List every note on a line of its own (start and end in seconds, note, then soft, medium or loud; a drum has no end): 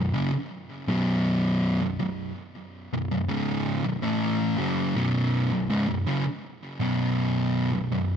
0.00 0.13 B1 medium
0.00 0.13 F#2 medium
0.14 0.32 F#2 loud
0.14 0.32 C#3 loud
0.34 muted distorted electric guitar stroke medium
0.88 1.80 B1 medium
0.88 1.80 F#2 medium
0.88 1.81 B2 medium
1.81 1.98 B1 medium
1.81 1.99 F#2 medium
1.99 2.29 B1 medium
1.99 2.30 F#2 medium
2.93 3.10 B1 medium
2.93 3.11 F#2 medium
3.11 3.28 B1 medium
3.11 3.29 F#2 medium
3.29 3.84 C#2 medium
3.29 3.84 G#2 medium
3.29 3.84 C#3 medium
3.85 4.02 B1 medium
3.85 4.03 F#2 medium
4.03 4.57 A2 medium
4.03 4.58 E3 medium
4.03 4.58 A3 loud
4.58 4.94 F#2 medium
4.58 4.95 C#3 loud
4.58 4.95 F#3 loud
4.95 5.50 B1 loud
4.95 5.51 F#2 loud
4.95 5.51 B2 loud
5.52 5.69 B1 medium
5.52 5.70 F#2 medium
5.70 5.87 C#2 loud
5.70 5.88 G#2 loud
5.88 6.07 B1 medium
5.88 6.06 F#2 medium
6.07 6.24 F#2 loud
6.07 6.25 C#3 loud
6.26 muted distorted electric guitar stroke medium
6.80 7.71 B1 medium
6.80 7.71 F#2 medium
6.80 7.72 B2 loud
7.72 7.91 B1 medium
7.72 7.91 F#2 medium
7.92 8.17 B1 medium
7.92 8.17 F#2 medium